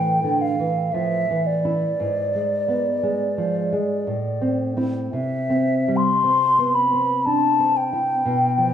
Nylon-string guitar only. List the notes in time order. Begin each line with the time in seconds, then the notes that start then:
Already playing: A2 E3
0.24 D3
0.59 E3
0.94 F3
1.30 E3
1.65 E4
2.00 G#2
2.35 G#3
2.68 B3
3.03 G#3
3.38 F3
3.73 G#3
4.07 A2
4.41 C4
4.77 C4 E4
5.13 C3
5.50 C4
5.88 G3
6.23 C4
6.58 B3
6.93 C4
7.26 D4
7.59 C4
7.93 E4
8.25 B2
8.58 F3